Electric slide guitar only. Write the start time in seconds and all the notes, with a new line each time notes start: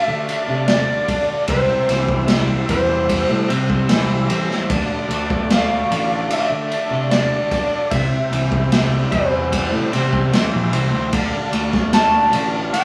0.00 E5
0.68 D5
1.50 C5
2.70 C5
5.54 F5
6.33 E5
6.39 F5
6.45 E5
7.11 D5
7.91 E5
9.12 C5
11.94 A5
12.73 G5